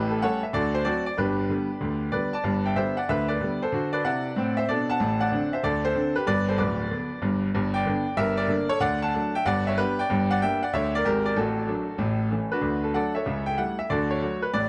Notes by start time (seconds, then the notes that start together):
Already playing: A1 A2 E4 G4 B4
0.10 A4
0.22 G3 A3 C#4 A4 C#5 F#5
0.43 E5
0.53 D2 D3 F#4 A4 D5
0.75 C5
0.85 F#3 A3 C4 F#4 A4 D5
1.06 D5
1.17 G1 G2 D4 G4 B4
1.49 D3 G3 B3
1.81 D2 D3
2.12 D3 G3 B3 B4 D5
2.33 D5 A5
2.44 G1 G2
2.66 E5 G5
2.76 D3 G3 B3 C5 E5
2.97 D5 F#5
3.09 D2 D3 B4 E5
3.28 B4 D5
3.41 D3 G3 B3
3.62 A4 C5
3.72 D3 F#4
3.93 B4 D5
4.04 C3 E4 D5 F#5
4.36 A2 C4
4.57 C5 E5
4.69 B2 D4 A4 D5
4.90 F#5 A5
5.00 A1 A2
5.21 D5 F#5
5.32 D3 C4 D4
5.53 C5 E5
5.63 D2 D3 A4 D5
5.85 A4 C5
5.95 D3 C4 D4
6.16 G4 B4
6.27 G1 G2 B4 D5
6.49 A4 C5
6.58 D1 D2 B4 D5
6.91 D3 B3 D4
7.22 G1 G2
7.55 G1 G2
7.74 D5 G5
7.86 D3 B3 D4
8.17 G1 G2 A#4 E5
8.37 A#4 D5
8.48 D3 A#3 D4
8.69 A4 C#5
8.80 D2 D3 D5 F#5
9.02 F#5 A5
9.15 F#3 A3 D4
9.35 E5 G5
9.46 G1 G2 D5 F#5
9.67 C#5 E5
9.78 G3 B3 D4 G4 B4
9.99 D5 G5
10.10 G1 G2
10.31 D5 F#5
10.42 G3 A#3 D4 E5 G5
10.63 D5 F#5
10.73 D2 D3 C#5 E5
10.95 A#4 D5
11.05 G#1 G#2 G4 A#4
11.26 A#4 D5
11.36 A1 A2 F#4 A4
11.67 F#3 A3 D4
11.98 A1 A2
12.31 E3 A3 C#4
12.52 D4 F#4 B4
12.61 D2 D3
12.84 A4
12.94 F#3 A3 D4 A4 D5 F#5
13.15 A4 C#5 E5
13.26 C#2 C#3
13.46 G5
13.58 G3 A3 E4 F#5
13.79 E5
13.90 D2 D3 F#4 A4 D5
14.11 C#5
14.22 F#3 A3 F#4
14.42 B4
14.54 A1 A2 D5